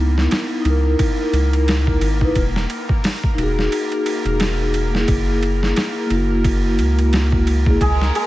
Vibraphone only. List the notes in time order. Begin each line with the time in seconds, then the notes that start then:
Already playing: B3 D#4 E4
0.62 D#4
0.66 E4 A#4
2.21 D#4 E4 B4
3.35 D#4
3.39 F#4
3.43 G#4
4.91 A#3
4.95 E4 G#4
6.07 A#3
6.11 E4
6.15 F#4
7.64 A#3 E4 G#4